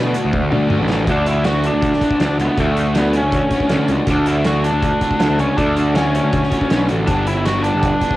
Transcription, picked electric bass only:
0.00 0.14 B2 medium
0.25 0.50 D2 medium
0.53 0.78 D2 medium
0.80 1.06 A1 medium
1.07 1.69 D2 medium
1.74 1.91 D2 medium
2.20 2.28 D2 medium
2.29 2.38 D2 medium
2.39 2.48 C#2 medium
2.58 3.19 D2 medium
3.23 3.41 D2 medium
3.70 3.78 D2 medium
3.78 3.88 D2 medium
3.89 3.98 C#2 medium
4.07 4.69 D2 loud
4.72 4.91 D2 medium
5.20 5.29 D2 medium
5.29 5.38 D2 medium
5.39 5.48 C#2 medium
5.57 6.20 D2 medium
6.24 6.41 D2 medium
6.72 6.88 B1 medium
6.91 7.07 A1 medium
7.08 7.70 G1 medium
7.75 7.92 G1 medium

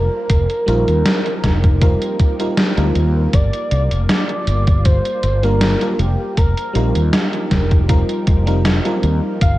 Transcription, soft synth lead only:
0.00 2.91 A#4 loud
3.34 4.06 D5 loud
4.09 4.86 D5 loud
4.85 5.44 C5 loud
5.43 6.00 A#4 loud
5.99 6.37 G4 medium
6.37 7.09 A#4 loud
9.42 9.58 F5 loud

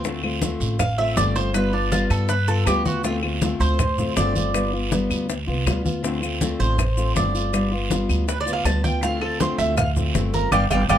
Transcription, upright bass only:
0.00 0.55 D2 medium
0.60 1.13 A1 medium
1.16 2.04 G1 medium
2.10 2.63 G2 medium
2.66 3.54 D2 medium
3.60 4.13 D2 medium
4.16 5.04 G1 medium
5.10 5.45 D2 medium
5.48 5.65 C2 medium
5.66 6.54 D2 medium
6.60 7.12 A1 medium
7.15 8.03 G1 medium
8.09 8.61 D2 medium
8.65 9.53 D2 medium
9.58 10.11 D2 medium
10.14 10.49 G1 medium
10.52 10.66 G1 loud
10.70 10.84 G1 loud
10.89 10.98 G1 loud

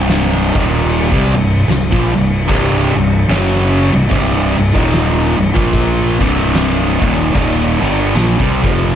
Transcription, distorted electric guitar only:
0.00 0.53 C2 medium
0.00 0.54 G2 loud
0.00 0.54 C3 loud
0.54 1.10 D#2 loud
0.54 1.10 A#2 loud
0.54 1.11 D#3 loud
1.11 1.33 C3 medium
1.11 1.34 G3 loud
1.34 1.61 C2 medium
1.34 1.62 G2 medium
1.68 1.91 C2 medium
1.68 1.92 G2 medium
1.91 2.14 A#2 loud
1.91 2.14 F3 loud
2.14 2.42 C2 medium
2.14 2.42 G2 medium
2.47 2.94 C2 loud
2.47 2.95 G2 loud
2.47 2.94 C3 loud
2.95 3.23 C2 medium
2.95 3.23 G2 medium
3.29 3.92 F#2 loud
3.29 3.93 C#3 loud
3.29 3.93 F#3 loud
3.93 4.08 C2 medium
3.93 4.08 G2 medium
4.09 4.55 C2 loud
4.09 4.56 G2 medium
4.09 4.57 C3 loud
4.56 4.73 C2 medium
4.56 4.74 G2 medium
4.74 5.37 D#2 loud
4.74 5.37 A#2 loud
4.74 5.38 D#3 loud
5.38 5.53 C2 medium
5.38 5.54 G2 medium
5.53 6.17 A#2 medium
5.53 6.18 F3 loud
5.53 6.18 A#3 loud
6.19 6.99 C2 medium
6.19 6.99 G2 loud
6.19 7.00 C3 loud
6.99 7.31 D#2 medium
6.99 7.32 A#2 loud
6.99 7.33 D#3 loud
7.33 7.80 D#2 loud
7.33 7.80 A#2 medium
7.33 7.80 D#3 loud
7.81 8.14 G2 medium
7.81 8.14 D3 loud
7.81 8.15 G3 loud
8.15 8.37 A#2 medium
8.15 8.38 F3 loud
8.38 8.61 C3 medium
8.38 8.62 G3 loud
8.62 8.95 F2 medium
8.62 8.95 C3 loud
8.62 8.95 F3 loud

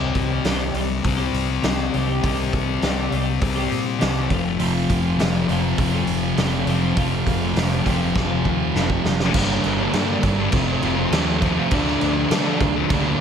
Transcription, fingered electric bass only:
0.00 0.11 C2 medium
0.15 0.40 C2 medium
0.44 0.70 C2 medium
0.74 0.99 C2 medium
1.04 1.29 C2 medium
1.33 1.59 C2 medium
1.63 1.89 C2 medium
1.94 2.19 C2 medium
2.23 2.48 C2 medium
2.53 2.78 C2 medium
2.82 3.07 C2 medium
3.12 3.37 C2 medium
3.42 3.67 C2 medium
3.71 3.97 A#2 medium
4.01 4.26 C2 medium
4.31 4.56 F1 medium
4.60 4.85 F1 medium
4.90 5.15 F1 medium
5.18 5.44 F1 medium
5.48 5.73 F1 medium
5.78 6.03 F1 medium
6.07 6.33 F1 medium
6.37 6.63 F1 medium
6.67 6.92 F1 loud
6.97 7.22 F1 medium
7.27 7.52 F1 medium
7.56 7.81 F1 medium
7.86 8.11 F1 medium
8.15 8.40 F1 medium
8.45 8.70 D#2 medium
8.74 9.00 F1 medium
9.04 9.29 F1 loud
9.34 9.57 G1 loud
9.64 9.87 G1 medium
9.93 10.16 G2 loud
10.23 10.46 G1 medium
10.52 10.75 F1 medium
10.82 11.05 F1 medium
11.11 11.57 D#2 medium
11.72 11.94 D2 medium
12.02 12.24 D2 medium
12.30 12.53 D3 medium
12.60 12.83 D2 medium
12.90 13.13 D2 medium

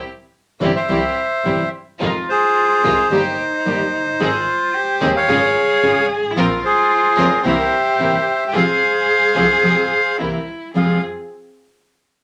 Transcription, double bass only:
0.61 0.84 G1 loud
0.88 1.12 C2 loud
1.44 1.68 G1 medium
2.00 2.24 F2 loud
2.83 3.06 C2 medium
3.10 3.34 G1 medium
3.66 3.89 G1 medium
3.92 4.19 F#1 medium
4.20 4.43 G#1 medium
5.01 5.24 D#2 medium
5.28 5.51 G#1 loud
5.82 6.05 G#1 medium
6.09 6.35 G#1 medium
6.36 6.59 A#1 loud
7.17 7.40 F1 loud
7.44 7.67 C2 loud
7.99 8.22 G1 medium
8.53 8.76 F2 medium
9.35 9.58 C2 loud
9.62 9.86 F2 loud
10.19 10.43 C2 medium
10.75 10.98 F2 medium

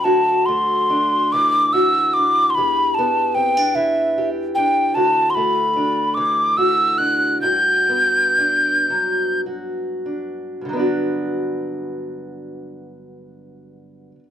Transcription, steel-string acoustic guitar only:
0.00 1.33 F#3 soft
0.00 0.13 B3 soft
0.00 0.90 D4 soft
0.05 2.57 D2 medium
0.05 1.73 F#4 soft
0.48 2.65 A3 soft
0.90 2.16 D4 soft
1.34 3.60 E3 medium
1.74 2.56 F#4 soft
2.17 3.35 D4 soft
2.57 4.95 E2 medium
2.57 4.17 G4 soft
2.99 5.04 B3 soft
3.36 3.57 C4 soft
3.57 4.56 D4 soft
3.75 5.79 E3 soft
4.18 4.96 G4 soft
4.57 5.76 D4 soft
4.95 7.42 D2 medium
4.95 6.58 F#4 soft
5.37 7.52 A3 soft
5.76 6.99 D4 soft
6.17 7.52 E3 medium
6.58 7.43 F#4 soft
7.00 8.38 D4 soft
7.43 10.60 G2 medium
7.43 9.46 F#4 soft
7.89 10.73 B3 soft
8.38 10.05 D4 soft
8.90 10.68 F#3 soft
9.46 10.79 F#4 soft
10.06 10.76 D4 soft
10.61 14.11 G2 soft
10.61 14.15 D3 soft
10.69 14.19 F#3 soft
10.73 14.23 B3 soft
10.73 14.27 D4 soft
10.79 14.29 F#4 soft

